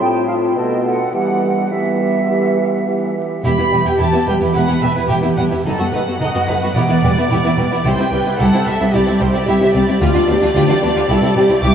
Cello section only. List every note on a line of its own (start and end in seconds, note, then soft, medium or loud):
3.44 3.49 E2 medium
3.58 3.63 E2 soft
3.72 3.77 E2 soft
3.85 3.91 E2 soft
3.99 4.05 E2 medium
4.13 4.19 E2 soft
4.27 4.33 E2 soft
4.41 4.47 E2 soft
4.55 4.60 E2 soft
4.68 4.74 E2 soft
4.82 4.88 E2 soft
4.96 5.02 E2 soft
5.10 5.15 E2 medium
5.24 5.29 E2 soft
5.37 5.43 E2 soft
5.51 5.56 E2 soft
5.65 5.70 F#2 medium
5.79 5.84 F#2 soft
5.92 5.98 F#2 soft
6.07 6.12 F#2 soft
6.20 6.26 F#2 medium
6.34 6.40 F#2 soft
6.48 6.54 F#2 soft
6.62 6.67 F#2 soft
6.75 6.80 E2 soft
6.89 6.94 E2 soft
7.03 7.08 E2 soft
7.17 7.22 E2 soft
7.30 7.36 E2 medium
7.44 7.49 E2 soft
7.57 7.63 E2 soft
7.71 7.76 E2 soft
7.84 7.90 C2 medium
7.97 8.03 C2 soft
8.11 8.16 C2 soft
8.25 8.30 C2 soft
8.38 8.44 C2 medium
8.53 8.58 C2 soft
8.67 8.72 C2 soft
8.80 8.86 C2 soft
8.93 8.99 C2 medium
9.07 9.13 C2 soft
9.21 9.26 C2 soft
9.34 9.40 C2 soft
9.48 9.53 C2 medium
9.61 9.66 C2 soft
9.74 9.80 C2 soft
9.88 9.93 C2 soft
10.01 10.06 D2 medium
10.15 10.20 D2 soft
10.28 10.34 D2 soft
10.42 10.47 D2 soft
10.55 10.60 D2 medium
10.68 10.74 D2 soft
10.82 10.87 D2 soft
10.95 11.01 D2 soft
11.09 11.14 C2 medium
11.22 11.27 C2 soft
11.35 11.41 C2 soft
11.49 11.55 C2 soft
11.63 11.68 C2 medium